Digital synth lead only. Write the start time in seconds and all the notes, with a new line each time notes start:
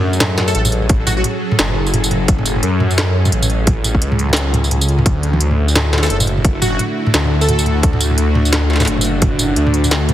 0.48 A4
0.55 A4
1.07 F#4
1.17 F#4
6.03 A4
6.09 A4
6.62 F#4
7.41 A4